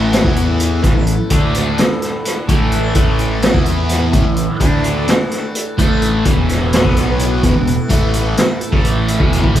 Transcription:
0.00 0.21 A1 medium
0.00 0.23 A2 medium
0.00 1.52 A2 medium
0.00 0.23 E3 medium
0.00 2.13 E3 medium
0.00 0.24 A3 medium
0.00 0.28 A3 medium
0.00 0.82 E4 medium
0.13 snare loud
0.13 closed hi-hat medium
0.24 0.80 E2 medium
0.24 0.82 E3 medium
0.24 0.91 A3 medium
0.24 0.83 B3 medium
0.24 0.83 E4 medium
0.24 kick medium
0.36 closed hi-hat medium
0.60 closed hi-hat medium
0.83 0.95 A1 medium
0.83 0.93 A2 medium
0.83 0.93 E3 medium
0.83 3.52 A4 medium
0.83 kick medium
0.83 snare soft
0.83 closed hi-hat medium
0.91 1.14 A2 medium
0.91 2.74 A3 medium
0.95 1.18 A1 medium
0.95 1.14 E3 medium
1.07 closed hi-hat medium
1.30 1.75 D2 medium
1.30 1.77 D3 medium
1.30 2.47 A3 medium
1.30 1.77 A3 medium
1.30 2.47 D4 medium
1.30 1.78 D4 medium
1.30 kick loud
1.30 closed hi-hat medium
1.52 3.98 A2 medium
1.52 snare soft
1.52 closed hi-hat medium
1.78 snare loud
1.78 closed hi-hat medium
2.02 snare soft
2.02 closed hi-hat medium
2.14 4.60 E3 medium
2.25 snare soft
2.25 closed hi-hat medium
2.48 2.92 A1 medium
2.48 2.94 A2 medium
2.48 2.95 E3 loud
2.48 2.95 A3 medium
2.48 3.53 C#4 medium
2.48 4.58 E4 medium
2.48 kick loud
2.48 closed hi-hat medium
2.72 3.36 A3 medium
2.72 closed hi-hat medium
2.95 3.51 A1 medium
2.95 3.53 A2 medium
2.95 3.52 E3 medium
2.95 3.54 A3 loud
2.95 kick medium
2.95 closed hi-hat medium
3.19 closed hi-hat medium
3.36 5.22 A3 medium
3.42 snare loud
3.42 closed hi-hat medium
3.53 4.10 E2 medium
3.53 4.12 E3 medium
3.53 4.13 B3 medium
3.53 4.13 E4 medium
3.53 kick medium
3.66 closed hi-hat medium
3.89 snare soft
3.89 closed hi-hat medium
3.98 6.45 A2 medium
4.12 4.24 A1 medium
4.12 4.24 A2 medium
4.12 4.24 E3 loud
4.12 kick loud
4.12 closed hi-hat medium
4.25 4.47 A1 medium
4.25 4.44 A2 medium
4.25 4.44 E3 medium
4.36 closed hi-hat medium
4.59 5.05 D2 medium
4.59 5.07 D3 medium
4.59 7.07 E3 medium
4.59 5.77 A3 medium
4.59 5.07 A3 medium
4.59 5.77 D4 medium
4.59 5.07 D4 medium
4.59 6.24 A4 medium
4.59 kick loud
4.59 closed hi-hat medium
4.84 closed hi-hat medium
5.08 snare loud
5.08 closed hi-hat medium
5.22 5.83 A3 medium
5.31 snare soft
5.31 closed hi-hat medium
5.55 closed hi-hat medium
5.78 6.22 A1 medium
5.78 6.24 A2 medium
5.78 6.24 E3 medium
5.78 6.25 A3 loud
5.78 6.84 E4 medium
5.78 kick medium
5.78 snare soft
5.78 closed hi-hat medium
5.83 7.71 A3 medium
6.02 closed hi-hat medium
6.25 6.81 E1 medium
6.25 6.83 E2 medium
6.25 6.82 B2 medium
6.25 6.84 E3 loud
6.25 7.42 B3 medium
6.25 7.89 B4 medium
6.25 kick loud
6.25 closed hi-hat medium
6.46 8.94 A2 medium
6.46 closed hi-hat medium
6.50 snare soft
6.73 snare loud
6.73 closed hi-hat medium
6.84 7.39 B1 medium
6.84 7.42 B2 medium
6.84 7.43 F#3 medium
6.84 7.43 B3 medium
6.84 kick medium
6.97 snare soft
6.97 closed hi-hat medium
7.07 9.54 E3 medium
7.19 closed hi-hat medium
7.43 7.54 E1 medium
7.43 7.54 E2 medium
7.43 7.55 B2 medium
7.43 9.18 E4 medium
7.43 kick loud
7.43 snare soft
7.43 closed hi-hat medium
7.55 7.78 E1 medium
7.55 7.74 E2 medium
7.55 7.74 B2 medium
7.67 8.32 A3 medium
7.67 closed hi-hat medium
7.89 8.34 A1 medium
7.89 8.36 A2 medium
7.89 8.36 E3 medium
7.89 8.37 A3 medium
7.89 9.19 A3 medium
7.89 9.19 A4 medium
7.89 kick loud
7.89 closed hi-hat medium
8.14 closed hi-hat medium
8.32 9.60 A3 medium
8.37 snare loud
8.37 closed hi-hat medium
8.61 closed hi-hat medium
8.72 9.16 A1 medium
8.72 9.19 A2 medium
8.72 9.19 E3 medium
8.72 9.19 A3 medium
8.72 kick loud
8.85 closed hi-hat medium
8.95 9.60 A2 medium
9.08 closed hi-hat medium
9.19 9.42 E1 medium
9.19 9.42 E2 medium
9.19 9.41 B2 medium
9.19 9.41 E3 medium
9.19 9.60 B3 medium
9.19 9.60 B4 medium
9.19 kick loud
9.33 snare soft
9.33 closed hi-hat medium
9.42 9.55 A1 medium
9.42 9.53 A2 medium
9.42 9.53 E3 medium
9.42 kick loud
9.53 9.60 E1 medium
9.53 9.60 E2 medium
9.53 9.60 B2 medium
9.53 9.60 E3 medium
9.53 kick medium
9.53 closed hi-hat medium

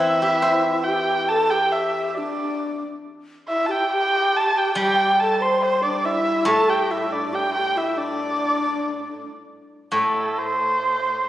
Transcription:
0.00 2.17 E3 medium
0.00 1.52 C4 soft
0.00 0.89 E4 medium
0.00 1.73 E4 soft
0.00 0.85 E5 loud
0.22 1.96 G4 soft
0.42 2.17 C5 medium
0.84 1.32 G4 medium
0.84 1.30 G5 loud
1.29 1.53 A4 loud
1.29 1.52 A5 loud
1.50 2.19 G4 medium
1.50 1.73 G5 loud
1.72 2.10 E5 medium
2.10 2.16 E5 soft
2.14 2.83 D4 medium
2.14 2.82 D5 medium
3.48 3.70 E4 medium
3.48 3.67 E5 medium
3.66 3.91 G4 medium
3.66 3.73 A5 medium
3.71 3.92 G5 medium
3.91 4.52 G4 medium
3.91 4.38 G5 loud
4.36 4.59 A5 loud
4.55 4.75 G4 medium
4.55 4.78 G5 medium
4.75 7.32 G3 medium
4.75 5.16 G4 medium
4.75 5.21 G5 loud
5.20 5.42 A4 medium
5.20 5.44 A5 loud
5.41 5.61 C5 medium
5.41 5.65 C6 loud
5.62 5.82 C5 medium
5.62 5.84 C5 loud
5.83 6.06 D4 medium
5.83 6.07 D5 medium
6.05 6.50 E4 medium
6.05 6.47 E5 loud
6.45 9.05 A2 medium
6.45 6.70 A4 loud
6.45 6.71 A5 loud
6.69 6.93 G4 medium
6.69 6.93 G5 loud
6.91 7.11 E4 medium
6.91 7.14 E5 loud
7.12 7.34 D4 medium
7.12 7.36 D5 medium
7.33 7.54 G4 medium
7.33 7.54 G5 loud
7.55 7.78 G4 medium
7.55 7.79 G5 loud
7.77 7.98 E4 medium
7.77 7.99 E5 medium
7.97 9.28 D4 medium
7.97 9.28 D5 loud
9.92 11.29 A2 soft
9.92 10.40 A4 medium
10.39 11.29 C5 medium

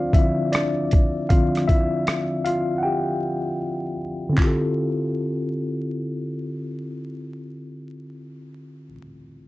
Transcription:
0.00 0.14 D3 medium
0.00 0.15 F3 medium
0.00 0.15 C4 medium
0.00 0.54 D4 medium
0.00 1.31 F4 medium
0.00 4.40 C5 medium
0.00 0.52 D5 medium
0.00 1.29 F5 medium
0.13 0.49 D3 soft
0.13 0.49 F3 soft
0.13 0.49 C4 soft
0.13 0.51 E4 medium
0.13 0.54 E5 medium
0.13 kick medium
0.13 closed hi-hat medium
0.52 1.27 D4 medium
0.52 1.32 D5 medium
0.52 cross-stick loud
0.52 closed hi-hat medium
0.91 kick medium
0.91 closed hi-hat medium
1.29 4.28 D3 medium
1.29 4.34 F3 soft
1.29 4.32 C4 medium
1.29 1.48 F4 medium
1.29 1.47 F5 medium
1.29 kick medium
1.29 closed hi-hat medium
1.55 cross-stick soft
1.55 closed hi-hat soft
1.68 2.42 E4 medium
1.68 2.47 E5 medium
1.68 kick medium
1.68 closed hi-hat medium
2.07 cross-stick loud
2.07 closed hi-hat medium
2.44 2.77 F4 medium
2.44 2.76 F5 medium
2.44 closed hi-hat medium
2.78 2.84 F#5 medium
2.83 3.96 G4 medium
2.83 3.95 G5 medium
4.29 8.87 D3 medium
4.29 8.89 C4 medium
4.36 8.91 E4 medium
4.36 8.93 F4 medium
4.36 kick medium
4.36 clap medium
4.44 8.94 G4 medium
4.44 8.96 A4 medium

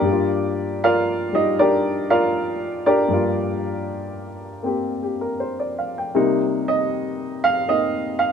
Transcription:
0.00 3.07 G2 medium
0.00 0.53 D4 medium
0.00 0.53 G4 medium
0.00 0.54 A#4 medium
0.00 0.53 D5 medium
0.04 1.31 G3 soft
0.04 3.10 A#3 soft
0.12 0.83 F4 medium
0.84 1.33 F4 medium
0.84 1.33 A#4 medium
0.84 1.33 D5 medium
0.84 1.33 F5 medium
1.33 3.09 G3 soft
1.33 1.58 D#4 medium
1.33 1.58 D#5 medium
1.59 2.09 D4 medium
1.59 2.09 G4 medium
1.59 2.09 A#4 medium
1.59 2.09 D5 medium
2.10 2.82 F4 medium
2.10 2.82 A#4 medium
2.10 2.82 D5 medium
2.10 2.82 F5 medium
2.86 3.58 D4 medium
2.86 3.58 G4 medium
2.86 3.58 A#4 medium
2.86 3.58 D5 medium
3.08 6.14 G2 medium
3.08 6.14 G3 soft
3.08 4.61 A#3 soft
3.13 6.17 F4 medium
4.63 6.14 A#3 soft
4.63 6.16 C4 soft
4.63 5.01 G4 soft
5.03 5.25 G4 soft
5.21 5.47 A#4 soft
5.40 5.76 C5 medium
5.60 5.92 D5 medium
5.79 6.01 F5 medium
5.98 6.24 G5 medium
6.15 8.32 C3 medium
6.15 8.32 G3 medium
6.15 7.66 A#3 medium
6.15 7.69 D#4 medium
6.68 7.40 D#5 medium
7.44 7.67 F5 loud
7.67 8.32 A#3 soft
7.67 8.32 C4 soft
7.67 8.32 D#4 soft
7.67 8.18 D#5 medium
8.19 8.32 F5 medium

